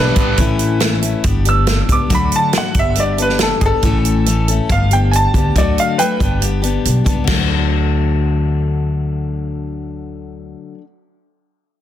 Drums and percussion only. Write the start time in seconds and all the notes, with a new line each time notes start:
0.16 kick, closed hi-hat
0.38 kick, closed hi-hat
0.59 closed hi-hat
0.80 snare, closed hi-hat
1.03 closed hi-hat
1.24 kick, closed hi-hat
1.45 closed hi-hat
1.67 snare, closed hi-hat
1.89 kick, closed hi-hat
2.10 kick, closed hi-hat
2.32 closed hi-hat
2.53 snare, closed hi-hat
2.74 kick, closed hi-hat
2.96 closed hi-hat
3.18 closed hi-hat
3.29 snare
3.39 snare, closed hi-hat
3.61 kick, closed hi-hat
3.83 kick, closed hi-hat
4.05 closed hi-hat
4.26 closed hi-hat
4.48 closed hi-hat
4.69 kick, closed hi-hat
4.91 closed hi-hat
5.13 closed hi-hat
5.34 kick, closed hi-hat
5.56 kick, closed hi-hat
5.78 closed hi-hat
5.99 closed hi-hat
6.20 kick, closed hi-hat
6.42 closed hi-hat
6.64 closed hi-hat
6.85 closed hi-hat
7.06 kick, closed hi-hat
7.27 kick, snare, crash